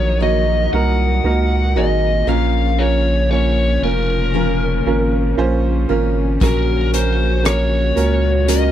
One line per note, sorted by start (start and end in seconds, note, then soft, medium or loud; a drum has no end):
0.00 0.68 A#1 medium
0.00 2.29 A#2 medium
0.00 8.72 A#2 medium
0.00 0.19 D#3 medium
0.00 2.24 D#3 medium
0.00 2.24 F#3 medium
0.00 0.20 A#3 medium
0.00 0.21 A#3 medium
0.00 0.20 D#4 medium
0.00 0.22 D#4 medium
0.00 2.24 D#4 medium
0.00 0.19 F#4 medium
0.00 0.21 F#4 medium
0.00 0.22 F#4 medium
0.00 0.75 A#4 medium
0.00 0.22 C#5 medium
0.20 1.76 D#3 soft
0.20 1.78 A#3 soft
0.20 0.70 A#3 medium
0.20 0.70 D#4 medium
0.20 1.76 D#4 soft
0.20 1.75 F#4 medium
0.20 0.71 F#4 medium
0.20 0.71 C#5 medium
0.20 0.70 D#5 medium
0.73 1.21 C2 medium
0.73 1.22 A#3 medium
0.73 1.22 D#4 medium
0.73 1.23 F#4 medium
0.73 1.23 A#4 medium
0.73 1.79 F#5 medium
1.24 1.77 C#2 medium
1.24 1.73 A#3 medium
1.24 1.74 D#4 medium
1.24 1.74 F#4 medium
1.24 1.74 A#4 medium
1.75 2.24 G#1 medium
1.75 2.25 A#3 medium
1.75 2.27 A#3 soft
1.75 2.25 D#4 medium
1.75 2.28 D#4 soft
1.75 2.28 F#4 soft
1.75 2.25 F#4 medium
1.75 2.26 G#4 medium
1.75 2.28 D#5 medium
2.27 3.78 A#1 medium
2.27 4.34 A#2 medium
2.27 8.72 C#3 medium
2.27 6.38 F3 medium
2.27 4.33 F3 medium
2.27 2.77 A#3 medium
2.27 4.34 A#3 medium
2.27 8.44 C#4 medium
2.27 2.77 C#4 medium
2.27 4.35 C#4 medium
2.27 2.77 F4 medium
2.27 4.34 F4 medium
2.27 2.77 A#4 medium
2.27 2.81 F5 medium
2.79 3.29 A#3 medium
2.79 3.29 C#4 medium
2.79 3.29 F4 medium
2.79 3.29 A#4 medium
2.79 3.30 C#5 medium
3.31 3.80 A#3 medium
3.31 3.81 C#4 medium
3.31 3.81 F4 medium
3.31 3.83 C#5 medium
3.31 3.81 C#5 medium
3.82 4.82 F1 medium
3.82 4.32 A#3 medium
3.82 4.32 C#4 medium
3.82 4.33 F4 soft
3.82 5.34 A#4 medium
3.82 4.33 A#4 medium
4.34 5.89 F3 soft
4.34 4.84 A#3 medium
4.34 5.90 A#3 soft
4.34 4.84 C#4 medium
4.34 5.89 C#4 soft
4.34 5.88 F4 medium
4.34 4.84 F4 medium
4.34 4.84 A#4 medium
4.86 5.34 G#1 medium
4.86 5.36 A#3 medium
4.86 5.36 C#4 medium
4.86 5.36 F4 medium
4.86 5.36 A#4 medium
5.37 5.86 A#1 medium
5.37 5.87 A#3 medium
5.37 5.87 C#4 medium
5.37 5.87 F4 medium
5.37 5.87 C5 loud
5.89 6.38 G#1 medium
5.89 6.39 A#3 medium
5.89 6.41 A#3 soft
5.89 6.39 C#4 medium
5.89 6.42 C#4 soft
5.89 6.41 F4 soft
5.89 6.39 F4 medium
5.89 6.39 A#4 medium
6.40 7.93 A#1 medium
6.40 8.48 A#2 medium
6.40 7.93 A#2 medium
6.40 8.48 F#3 medium
6.40 8.72 A#3 medium
6.40 6.91 A#3 medium
6.40 8.47 A#3 medium
6.40 6.91 C#4 medium
6.40 8.48 C#4 medium
6.40 8.72 F#4 medium
6.40 6.91 F#4 medium
6.40 8.49 F#4 medium
6.40 6.90 A#4 medium
6.40 6.91 A#4 medium
6.40 kick loud
6.40 closed hi-hat medium
6.93 7.42 A#3 medium
6.93 7.42 C#4 medium
6.93 7.43 F#4 medium
6.93 7.43 A#4 medium
6.93 7.46 C5 medium
6.93 closed hi-hat medium
7.43 7.93 A#3 medium
7.43 7.94 C#4 medium
7.43 7.94 F#4 soft
7.43 7.94 A#4 medium
7.43 8.52 C#5 medium
7.43 cross-stick medium
7.43 closed hi-hat medium
7.96 8.72 C#2 medium
7.96 8.45 A#3 medium
7.96 8.46 C#4 medium
7.96 8.46 F#4 medium
7.96 8.46 A#4 medium
7.96 closed hi-hat soft
8.48 8.72 A#3 medium
8.48 8.72 C#4 medium
8.48 8.72 D#4 medium
8.48 8.72 F#4 medium
8.48 8.72 A#4 medium
8.48 8.72 D#5 loud
8.48 closed hi-hat medium